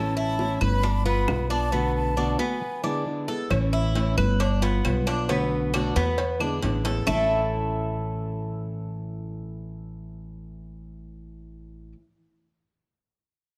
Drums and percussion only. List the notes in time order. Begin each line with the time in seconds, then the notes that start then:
0.39 high bongo
0.61 claves
0.84 high bongo
1.28 high bongo, low bongo, claves
3.51 cowbell, claves
3.95 cowbell
4.18 claves
4.40 cowbell
4.62 cowbell
4.85 cowbell, claves
5.07 cowbell
5.29 cowbell
5.74 cowbell, claves
5.96 cowbell
6.18 cowbell
6.40 claves
6.62 cowbell
6.85 cowbell
7.07 low bongo, claves